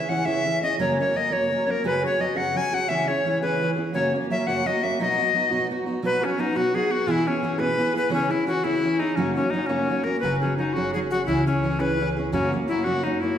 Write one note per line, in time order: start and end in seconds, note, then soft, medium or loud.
0.00 0.10 E5 medium
0.09 0.26 E3 medium
0.09 0.26 C#4 soft
0.09 0.25 E4 medium
0.09 0.24 G#4 medium
0.09 0.27 F#5 medium
0.25 0.46 C#3 soft
0.25 0.44 E3 medium
0.25 0.45 C#4 medium
0.25 0.45 E4 medium
0.25 0.45 G#4 medium
0.25 0.62 E5 medium
0.45 0.62 E3 soft
0.45 0.62 C#4 soft
0.45 0.61 E4 medium
0.45 0.60 G#4 medium
0.61 0.79 C#4 soft
0.61 0.79 E4 soft
0.61 0.78 G#4 soft
0.61 0.78 D#5 medium
0.79 0.98 F#2 medium
0.79 0.99 C#3 medium
0.79 0.99 F#3 medium
0.79 0.99 A#3 medium
0.79 0.99 C#4 medium
0.79 0.98 A#4 medium
0.79 0.98 C#5 medium
0.99 1.13 F#3 soft
0.99 1.14 A#3 soft
0.99 1.15 C#4 soft
0.99 1.15 A#4 soft
0.99 1.18 C#5 medium
1.14 1.31 F#3 medium
1.14 1.31 A#3 medium
1.14 1.31 C#4 medium
1.14 1.30 A#4 medium
1.14 1.34 D#5 medium
1.31 1.52 F#2 soft
1.31 1.52 C#3 soft
1.31 1.50 F#3 medium
1.31 1.50 A#3 soft
1.31 1.51 C#4 medium
1.31 1.51 A#4 soft
1.31 1.72 C#5 medium
1.51 1.67 F#3 soft
1.51 1.67 A#3 soft
1.51 1.66 C#4 soft
1.51 1.65 A#4 medium
1.66 1.83 F#3 soft
1.66 1.84 A#3 soft
1.66 1.84 C#4 soft
1.66 1.83 A#4 soft
1.71 1.86 A#4 medium
1.84 2.04 F#2 medium
1.84 2.04 C#3 medium
1.84 2.04 F#3 medium
1.84 2.03 C#4 medium
1.84 2.02 F#4 medium
1.84 2.02 G#4 medium
1.84 2.03 B4 medium
2.03 2.18 F#3 soft
2.03 2.20 C#4 soft
2.03 2.20 F#4 soft
2.03 2.20 G#4 soft
2.03 2.22 C#5 medium
2.19 2.35 F#3 medium
2.19 2.34 C#4 medium
2.19 2.35 F#4 medium
2.19 2.34 G#4 medium
2.19 2.38 D#5 medium
2.35 2.56 F#2 soft
2.35 2.56 C#3 medium
2.35 2.54 F#3 medium
2.35 2.55 C#4 medium
2.35 2.56 F#4 soft
2.35 2.55 G#4 medium
2.35 2.58 F#5 medium
2.55 2.72 F#3 medium
2.55 2.72 C#4 soft
2.55 2.72 F#4 medium
2.55 2.70 G#4 soft
2.55 2.76 G#5 medium
2.71 2.89 F#3 soft
2.71 2.89 C#4 soft
2.71 2.89 F#4 soft
2.71 2.88 G#4 medium
2.71 2.90 F#5 medium
2.89 3.08 C#3 medium
2.89 3.09 E3 medium
2.89 3.09 C#4 medium
2.89 3.08 E4 medium
2.89 3.07 G#4 medium
2.89 3.09 E5 medium
3.08 3.25 C#4 soft
3.08 3.25 E4 soft
3.08 3.25 G#4 soft
3.08 3.41 C#5 medium
3.25 3.41 E3 soft
3.25 3.42 C#4 soft
3.25 3.41 E4 medium
3.25 3.41 G#4 medium
3.42 3.62 C#3 soft
3.42 3.61 E3 soft
3.42 3.61 C#4 medium
3.42 3.61 E4 medium
3.42 3.61 G#4 medium
3.42 3.71 B4 medium
3.62 3.78 E3 medium
3.62 3.78 C#4 medium
3.62 3.77 E4 medium
3.62 3.75 G#4 soft
3.76 3.94 C#4 soft
3.76 3.94 E4 soft
3.76 3.93 G#4 medium
3.93 4.13 F#2 medium
3.93 4.13 C#3 medium
3.93 4.14 F#3 medium
3.93 4.14 A#3 medium
3.93 4.13 C#4 medium
3.93 4.12 F#4 medium
3.93 4.12 C#5 medium
4.13 4.29 F#3 soft
4.13 4.30 A#3 soft
4.13 4.30 C#4 soft
4.13 4.30 F#4 soft
4.30 4.46 F#3 medium
4.30 4.47 A#3 medium
4.30 4.47 C#4 medium
4.30 4.47 F#4 medium
4.30 4.48 E5 medium
4.47 4.67 F#2 soft
4.47 4.67 C#3 medium
4.47 4.64 F#3 soft
4.47 4.65 A#3 soft
4.47 4.66 C#4 medium
4.47 4.66 F#4 medium
4.47 4.68 F#5 medium
4.66 4.82 F#3 soft
4.66 4.83 A#3 soft
4.66 4.82 C#4 soft
4.66 4.81 F#4 medium
4.66 4.85 D#5 medium
4.83 4.98 F#3 soft
4.83 4.99 A#3 soft
4.83 4.99 C#4 soft
4.83 4.99 F#4 soft
4.83 4.99 E5 medium
4.99 5.18 B2 medium
4.99 5.18 F#3 medium
4.99 5.19 B3 medium
4.99 5.18 D#4 medium
4.99 5.17 F#4 medium
4.99 5.68 D#5 medium
5.18 5.33 B3 soft
5.18 5.34 D#4 soft
5.18 5.34 F#4 soft
5.33 5.50 F#3 soft
5.33 5.50 B3 medium
5.33 5.49 D#4 medium
5.33 5.49 F#4 medium
5.50 5.71 B2 medium
5.50 5.68 F#3 medium
5.50 5.70 B3 medium
5.50 5.70 D#4 medium
5.50 5.70 F#4 medium
5.70 5.86 F#3 medium
5.70 5.87 B3 soft
5.70 5.86 D#4 medium
5.70 5.85 F#4 medium
5.86 6.02 B3 soft
5.86 6.03 D#4 soft
5.86 6.03 F#4 soft
6.03 6.22 B2 medium
6.03 6.22 F#3 medium
6.03 6.22 B3 medium
6.03 6.22 D#4 medium
6.03 6.20 F#4 medium
6.03 6.26 B4 medium
6.21 6.37 B3 soft
6.21 6.41 C#4 medium
6.21 6.38 D#4 soft
6.21 6.38 F#4 medium
6.38 6.55 F#3 medium
6.38 6.54 B3 medium
6.38 6.54 D#4 medium
6.38 6.58 D#4 medium
6.38 6.53 F#4 medium
6.55 6.75 B2 soft
6.55 6.73 F#3 soft
6.55 6.74 B3 medium
6.55 6.74 D#4 medium
6.55 6.74 F#4 medium
6.55 6.76 F#4 medium
6.74 6.91 F#3 soft
6.74 6.90 B3 medium
6.74 6.89 D#4 soft
6.74 6.88 F#4 medium
6.74 6.93 G#4 medium
6.89 7.07 B3 soft
6.89 7.07 D#4 soft
6.89 7.07 F#4 soft
6.89 7.09 F#4 medium
7.07 7.27 B2 medium
7.07 7.27 E3 medium
7.07 7.27 B3 medium
7.07 7.26 E4 medium
7.07 7.12 F4 medium
7.07 7.25 G#4 medium
7.11 7.29 E4 loud
7.26 7.42 B3 soft
7.26 7.61 C#4 medium
7.26 7.42 E4 soft
7.26 7.43 G#4 medium
7.42 7.59 E3 medium
7.42 7.58 B3 medium
7.42 7.58 E4 medium
7.42 7.57 G#4 medium
7.58 7.80 B2 medium
7.58 7.76 E3 medium
7.58 7.77 B3 soft
7.58 7.78 E4 soft
7.58 7.78 G#4 medium
7.58 7.96 B4 medium
7.77 7.95 E3 medium
7.77 7.94 B3 medium
7.77 7.93 E4 medium
7.77 7.92 G#4 medium
7.93 8.10 B3 soft
7.93 8.10 E4 soft
7.93 8.10 G#4 soft
7.93 8.12 B4 medium
8.10 8.30 C#3 medium
8.10 8.30 E3 medium
8.10 8.30 C#4 medium
8.10 8.32 C#4 medium
8.10 8.28 E4 medium
8.10 8.28 G#4 medium
8.29 8.46 C#4 soft
8.29 8.46 E4 soft
8.29 8.47 E4 medium
8.29 8.47 G#4 soft
8.46 8.64 E3 medium
8.46 8.64 C#4 medium
8.46 8.63 E4 medium
8.46 8.65 F#4 medium
8.46 8.63 G#4 medium
8.64 8.84 C#3 soft
8.64 8.82 E3 medium
8.64 8.83 C#4 medium
8.64 9.01 E4 loud
8.64 8.83 E4 medium
8.64 8.84 G#4 medium
8.83 9.00 E3 medium
8.83 9.01 C#4 soft
8.83 9.00 E4 medium
8.83 8.98 G#4 medium
8.99 9.17 C#4 soft
8.99 9.17 D#4 medium
8.99 9.17 E4 soft
8.99 9.17 G#4 soft
9.16 9.36 F#2 medium
9.16 9.37 C#3 medium
9.16 9.37 F#3 medium
9.16 9.37 A#3 medium
9.16 9.34 C#4 medium
9.16 9.36 C#4 medium
9.16 9.36 F#4 medium
9.35 9.53 A#3 soft
9.35 9.52 C#4 medium
9.35 9.53 C#4 soft
9.35 9.53 F#4 medium
9.39 9.52 F#3 soft
9.50 9.69 F#3 medium
9.50 9.68 A#3 medium
9.50 9.68 D#4 medium
9.54 9.68 C#4 medium
9.54 9.68 F#4 medium
9.66 9.90 C#3 soft
9.66 9.88 F#3 soft
9.66 9.89 A#3 medium
9.66 10.05 C#4 medium
9.66 9.89 C#4 medium
9.66 9.89 F#4 medium
9.71 9.90 F#2 medium
9.89 10.06 F#3 soft
9.89 10.05 A#3 soft
9.89 10.05 C#4 soft
9.89 10.04 F#4 medium
10.04 10.22 F#3 soft
10.04 10.23 A#3 soft
10.04 10.22 C#4 soft
10.04 10.22 F#4 soft
10.04 10.19 A#4 medium
10.20 11.26 F#1 medium
10.20 10.42 F#2 medium
10.20 10.42 C#3 medium
10.20 10.42 F#3 medium
10.20 10.39 B4 medium
10.24 10.42 C#4 medium
10.24 10.42 F#4 medium
10.24 10.40 G#4 medium
10.40 10.56 C#4 medium
10.40 10.58 C#4 soft
10.40 10.59 F#4 soft
10.40 10.58 G#4 medium
10.45 10.57 F#3 soft
10.57 10.75 F#3 medium
10.57 10.75 C#4 soft
10.57 10.75 D#4 medium
10.57 10.75 F#4 medium
10.57 10.75 G#4 soft
10.73 10.94 F#3 medium
10.73 10.95 C#4 medium
10.73 10.93 F#4 medium
10.73 10.95 F#4 medium
10.73 10.95 G#4 medium
10.77 10.96 F#2 medium
10.77 10.96 C#3 medium
10.94 11.11 F#3 medium
10.94 11.12 C#4 medium
10.94 11.11 F#4 medium
10.94 11.00 G#4 medium
10.94 11.10 G#4 medium
11.11 11.27 F#3 soft
11.11 11.27 C#4 soft
11.11 11.25 F#4 medium
11.11 11.28 F#4 soft
11.11 11.27 G#4 soft
11.26 12.31 C#2 medium
11.26 11.47 C#3 medium
11.26 11.47 E3 medium
11.26 11.47 C#4 medium
11.26 11.45 E4 medium
11.26 11.47 E4 medium
11.26 11.46 G#4 medium
11.47 11.81 C#4 medium
11.47 11.63 C#4 soft
11.47 11.64 E4 soft
11.47 11.64 G#4 soft
11.63 11.79 E3 medium
11.63 11.79 C#4 medium
11.63 11.79 E4 medium
11.63 11.78 G#4 medium
11.79 12.00 C#3 soft
11.79 11.99 E3 medium
11.79 12.00 C#4 medium
11.79 12.00 E4 medium
11.79 11.99 G#4 medium
11.79 12.09 B4 medium
12.00 12.16 E3 medium
12.00 12.17 C#4 medium
12.00 12.16 E4 medium
12.00 12.15 G#4 medium
12.17 12.32 C#4 soft
12.17 12.33 E4 soft
12.17 12.33 G#4 soft
12.32 12.52 F#2 medium
12.32 13.36 F#2 medium
12.32 12.52 C#3 medium
12.32 12.52 F#3 medium
12.32 12.52 A#3 medium
12.32 12.52 C#4 medium
12.32 12.51 F#4 medium
12.52 12.68 F#3 soft
12.52 12.68 A#3 soft
12.52 12.69 C#4 soft
12.52 12.69 F#4 soft
12.68 12.85 F#3 medium
12.68 12.85 A#3 medium
12.68 12.85 C#4 medium
12.68 12.86 E4 medium
12.68 12.84 F#4 medium
12.84 13.06 F#2 medium
12.84 13.06 C#3 soft
12.84 13.03 F#3 medium
12.84 13.04 A#3 soft
12.84 13.05 C#4 medium
12.84 13.05 F#4 medium
13.04 13.21 F#3 medium
13.04 13.22 A#3 medium
13.04 13.22 C#4 medium
13.04 13.22 D#4 medium
13.04 13.20 F#4 soft
13.20 13.38 A#3 soft
13.20 13.38 C#4 soft
13.20 13.38 E4 medium
13.20 13.38 F#4 soft
13.24 13.37 F#3 soft